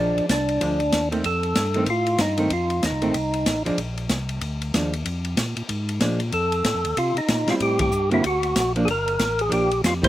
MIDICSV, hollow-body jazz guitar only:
0, 0, Header, 1, 2, 480
1, 0, Start_track
1, 0, Tempo, 317965
1, 1863, Time_signature, 4, 2, 24, 8
1, 15221, End_track
2, 0, Start_track
2, 0, Title_t, "Hollow-body jazz guitar"
2, 0, Program_c, 0, 26
2, 0, Note_on_c, 0, 53, 57
2, 0, Note_on_c, 0, 56, 61
2, 0, Note_on_c, 0, 62, 64
2, 389, Note_off_c, 0, 53, 0
2, 397, Note_off_c, 0, 56, 0
2, 397, Note_off_c, 0, 62, 0
2, 915, Note_on_c, 0, 53, 51
2, 923, Note_on_c, 0, 56, 47
2, 931, Note_on_c, 0, 62, 54
2, 1175, Note_off_c, 0, 53, 0
2, 1179, Note_off_c, 0, 56, 0
2, 1183, Note_off_c, 0, 62, 0
2, 1679, Note_on_c, 0, 51, 54
2, 1687, Note_on_c, 0, 57, 62
2, 1691, Note_on_c, 0, 60, 57
2, 1845, Note_off_c, 0, 51, 0
2, 1849, Note_off_c, 0, 57, 0
2, 1851, Note_off_c, 0, 60, 0
2, 2642, Note_on_c, 0, 51, 56
2, 2659, Note_on_c, 0, 57, 60
2, 2666, Note_on_c, 0, 60, 62
2, 2805, Note_off_c, 0, 51, 0
2, 2813, Note_off_c, 0, 57, 0
2, 2817, Note_off_c, 0, 60, 0
2, 3587, Note_on_c, 0, 51, 55
2, 3598, Note_on_c, 0, 57, 65
2, 3603, Note_on_c, 0, 60, 61
2, 3757, Note_off_c, 0, 51, 0
2, 3763, Note_off_c, 0, 57, 0
2, 3765, Note_off_c, 0, 60, 0
2, 4554, Note_on_c, 0, 51, 57
2, 4564, Note_on_c, 0, 57, 61
2, 4567, Note_on_c, 0, 60, 70
2, 4720, Note_off_c, 0, 51, 0
2, 4725, Note_off_c, 0, 57, 0
2, 4727, Note_off_c, 0, 60, 0
2, 5513, Note_on_c, 0, 53, 59
2, 5526, Note_on_c, 0, 56, 60
2, 5536, Note_on_c, 0, 62, 65
2, 5679, Note_off_c, 0, 53, 0
2, 5686, Note_off_c, 0, 56, 0
2, 5691, Note_off_c, 0, 62, 0
2, 7154, Note_on_c, 0, 53, 45
2, 7158, Note_on_c, 0, 56, 47
2, 7169, Note_on_c, 0, 62, 50
2, 7412, Note_off_c, 0, 53, 0
2, 7414, Note_off_c, 0, 56, 0
2, 7420, Note_off_c, 0, 62, 0
2, 9063, Note_on_c, 0, 53, 52
2, 9073, Note_on_c, 0, 56, 60
2, 9077, Note_on_c, 0, 62, 52
2, 9328, Note_off_c, 0, 53, 0
2, 9333, Note_off_c, 0, 56, 0
2, 9335, Note_off_c, 0, 62, 0
2, 11277, Note_on_c, 0, 55, 53
2, 11288, Note_on_c, 0, 60, 58
2, 11296, Note_on_c, 0, 64, 57
2, 11907, Note_off_c, 0, 55, 0
2, 11913, Note_off_c, 0, 60, 0
2, 11917, Note_off_c, 0, 64, 0
2, 12243, Note_on_c, 0, 50, 54
2, 12244, Note_on_c, 0, 58, 56
2, 12252, Note_on_c, 0, 60, 64
2, 12259, Note_on_c, 0, 66, 63
2, 12409, Note_off_c, 0, 50, 0
2, 12409, Note_off_c, 0, 58, 0
2, 12413, Note_off_c, 0, 60, 0
2, 12417, Note_off_c, 0, 66, 0
2, 13222, Note_on_c, 0, 53, 58
2, 13228, Note_on_c, 0, 58, 55
2, 13237, Note_on_c, 0, 62, 67
2, 13379, Note_off_c, 0, 53, 0
2, 13382, Note_off_c, 0, 58, 0
2, 13386, Note_off_c, 0, 62, 0
2, 14324, Note_on_c, 0, 53, 47
2, 14340, Note_on_c, 0, 58, 52
2, 14352, Note_on_c, 0, 62, 50
2, 14602, Note_off_c, 0, 53, 0
2, 14610, Note_off_c, 0, 58, 0
2, 14616, Note_off_c, 0, 62, 0
2, 15122, Note_on_c, 0, 55, 51
2, 15136, Note_on_c, 0, 58, 58
2, 15140, Note_on_c, 0, 64, 65
2, 15221, Note_off_c, 0, 55, 0
2, 15221, Note_off_c, 0, 58, 0
2, 15221, Note_off_c, 0, 64, 0
2, 15221, End_track
0, 0, End_of_file